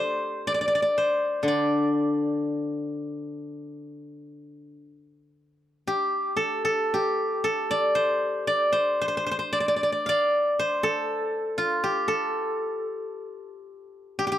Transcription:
Already playing: F4 G4 A4 C5 D5
0.47 D5
0.54 D5
0.61 D5
0.68 D5
0.75 D5
0.82 D5
0.98 C5
1.43 D3
1.48 D5
5.87 G4
6.36 A4
6.65 A4
6.94 G4
7.44 A4
7.71 D5
7.95 C5
8.47 D5
8.73 C5
9.02 C5
9.08 C5
9.17 C5
9.26 C5
9.31 C5
9.39 C5
9.53 D5
9.60 D5
9.68 D5
9.76 D5
9.83 D5
9.92 D5
10.06 D5 F5
10.59 C5
10.83 A4
11.58 F4
11.84 G4
12.08 A4
14.19 G4
14.27 G4
14.32 G4

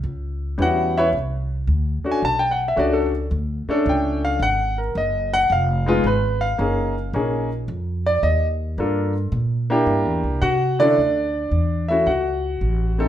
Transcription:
0.04 C#2
0.58 E2 G3 B3 C#4 E4
0.62 F#4 F#5
0.98 E4 B4 C#5 E5
1.13 C2
1.67 D2
2.04 A3 C#4 D4 F#4, muted upright bass stroke
2.12 G#5
2.22 B1 A5
2.39 G5
2.51 F#5
2.68 E5
2.76 C#2 A3 C#4 D4 F#4 D5
2.93 A4
3.31 D2
3.68 A3 C#4 D4 A4, muted upright bass stroke
3.86 C#2 G5
4.25 F5
4.40 G#1 F#5
4.78 A#4
4.95 F#1 D#5
5.33 F#5
5.50 F1 F5
5.86 G#3 B3 D#4 F4 G#4
6.04 G#1 B4
6.41 F5
6.58 F#1 A#3 C#4 D#4 G#4
7.13 A#1 A#3 C#4 D#4 G#4
7.68 F2
8.06 D5
8.23 D#2 D#5
8.78 G2 A#3 D4 F4 A4
9.32 A#2
9.70 A#3 D4 E4 G4
9.86 G2
10.05 E2
10.23 C2
10.42 C3 F#4 F#5
10.79 D3 A3 C#4 D4 E4 A4 D5
10.98 D2
11.51 E2
11.88 A3 C#4 E4 F#4 E5
12.06 C#2 F#4 F#5
12.61 A1
12.98 A3 C4 D#4 A4

